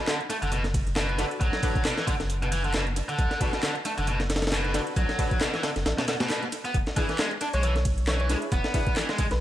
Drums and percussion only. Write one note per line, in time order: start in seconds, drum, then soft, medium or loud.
0.07 snare loud
0.07 clap loud
0.07 closed hi-hat medium
0.07 closed hi-hat soft
0.21 closed hi-hat soft
0.30 closed hi-hat medium
0.30 ride medium
0.42 closed hi-hat soft
0.52 closed hi-hat medium
0.52 closed hi-hat soft
0.64 snare soft
0.64 closed hi-hat soft
0.74 kick loud
0.74 closed hi-hat medium
0.74 ride medium
0.87 closed hi-hat soft
0.96 snare loud
0.96 clap loud
0.96 closed hi-hat medium
0.96 closed hi-hat soft
1.09 closed hi-hat soft
1.18 snare soft
1.18 closed hi-hat medium
1.18 ride medium
1.31 closed hi-hat soft
1.41 kick loud
1.41 closed hi-hat medium
1.41 closed hi-hat soft
1.53 snare medium
1.53 closed hi-hat soft
1.63 kick loud
1.63 closed hi-hat medium
1.63 open hi-hat medium
1.63 ride medium
1.75 kick loud
1.75 closed hi-hat soft
1.85 snare loud
1.85 clap loud
1.85 closed hi-hat medium
1.85 closed hi-hat soft
1.98 snare medium
1.98 closed hi-hat soft
2.07 kick medium
2.07 closed hi-hat medium
2.07 ride medium
2.20 snare soft
2.20 closed hi-hat soft
2.30 closed hi-hat medium
2.30 closed hi-hat soft
2.42 closed hi-hat soft
2.52 closed hi-hat medium
2.52 ride medium
2.64 closed hi-hat soft
2.74 snare loud
2.74 clap loud
2.74 closed hi-hat soft
2.74 closed hi-hat medium
2.87 closed hi-hat soft
2.96 closed hi-hat medium
2.96 ride medium
3.09 closed hi-hat soft
3.19 kick loud
3.19 closed hi-hat medium
3.19 closed hi-hat soft
3.31 snare soft
3.31 closed hi-hat soft
3.41 kick loud
3.41 closed hi-hat medium
3.41 ride medium
3.53 snare soft
3.53 closed hi-hat soft
3.63 snare loud
3.63 clap loud
3.63 closed hi-hat medium
3.63 closed hi-hat soft
3.75 closed hi-hat soft
3.85 closed hi-hat medium
3.85 ride medium
3.98 closed hi-hat soft
4.07 closed hi-hat medium
4.07 closed hi-hat soft
4.20 snare soft
4.20 closed hi-hat soft
4.30 snare medium
4.30 closed hi-hat medium
4.30 ride medium
4.36 snare medium
4.36 closed hi-hat medium
4.42 snare medium
4.42 closed hi-hat medium
4.42 closed hi-hat soft
4.47 snare medium
4.47 closed hi-hat medium
4.52 snare loud
4.52 clap loud
4.52 closed hi-hat medium
4.52 closed hi-hat soft
4.65 closed hi-hat soft
4.74 snare soft
4.74 closed hi-hat medium
4.74 ride medium
4.87 closed hi-hat soft
4.96 kick loud
4.96 closed hi-hat medium
4.96 closed hi-hat soft
5.09 snare medium
5.09 closed hi-hat soft
5.19 kick medium
5.19 closed hi-hat medium
5.19 open hi-hat medium
5.19 ride medium
5.31 kick loud
5.31 closed hi-hat soft
5.41 snare loud
5.41 clap loud
5.41 closed hi-hat medium
5.41 closed hi-hat soft
5.54 snare medium
5.54 closed hi-hat soft
5.63 snare loud
5.63 closed hi-hat medium
5.63 ride medium
5.76 snare soft
5.76 closed hi-hat soft
5.76 ride medium
5.86 snare loud
5.86 closed hi-hat soft
5.86 closed hi-hat medium
5.98 snare loud
5.98 closed hi-hat soft
5.98 closed hi-hat medium
6.08 snare loud
6.08 closed hi-hat medium
6.08 ride medium
6.20 snare loud
6.20 closed hi-hat medium
6.20 closed hi-hat soft
6.30 snare loud
6.30 clap loud
6.30 closed hi-hat soft
6.30 closed hi-hat medium
6.43 closed hi-hat soft
6.52 closed hi-hat medium
6.52 ride medium
6.65 closed hi-hat soft
6.74 kick loud
6.74 closed hi-hat soft
6.74 closed hi-hat medium
6.87 snare soft
6.87 closed hi-hat soft
6.96 kick medium
6.96 closed hi-hat medium
6.96 ride medium
7.09 snare soft
7.09 closed hi-hat soft
7.19 snare loud
7.19 clap loud
7.19 closed hi-hat soft
7.19 closed hi-hat medium
7.31 closed hi-hat soft
7.41 closed hi-hat medium
7.41 ride medium
7.53 closed hi-hat soft
7.63 closed hi-hat soft
7.63 closed hi-hat medium
7.76 snare soft
7.76 closed hi-hat soft
7.85 kick loud
7.85 closed hi-hat medium
7.85 ride medium
7.98 closed hi-hat soft
8.07 snare loud
8.07 clap loud
8.07 closed hi-hat soft
8.07 closed hi-hat medium
8.20 closed hi-hat soft
8.29 snare soft
8.29 closed hi-hat medium
8.29 ride medium
8.42 closed hi-hat soft
8.52 kick loud
8.52 closed hi-hat soft
8.52 closed hi-hat medium
8.64 snare medium
8.64 closed hi-hat soft
8.74 kick loud
8.74 closed hi-hat medium
8.74 open hi-hat medium
8.74 ride medium
8.87 kick loud
8.87 closed hi-hat soft
8.96 snare loud
8.96 clap loud
8.96 closed hi-hat soft
8.96 closed hi-hat medium
9.09 snare medium
9.09 closed hi-hat soft
9.18 kick medium
9.18 closed hi-hat medium
9.18 ride medium
9.31 snare soft
9.31 closed hi-hat soft